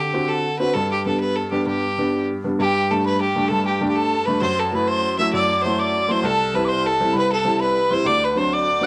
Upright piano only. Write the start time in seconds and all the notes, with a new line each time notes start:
Already playing: D3
0.13 C4 D4 F#4
0.60 C4 D4 F#4
0.75 G2
1.05 G3 B3 D4
1.52 G3 B3 D4
1.66 G2
1.98 G3 B3 D4
2.44 G3 B3 D4
2.59 G2
2.91 G3 A3 D4
3.35 G3 A3 D4
3.50 G2
3.81 G3 A3 D4
4.27 G3 A3 D4
4.42 F#2
4.72 F#3 A3 E4
5.19 F#3 A3 E4
5.33 F#2
5.65 F#3 A3 E4
6.08 F#3 A3 E4
6.23 C2
6.54 G3 C4 E4
7.00 G3 C4 E4
7.14 C2
7.45 G3 C4 E4
7.90 G3 C4 E4
8.05 D2
8.35 F#3 C4 D4
8.81 F#3 C4 D4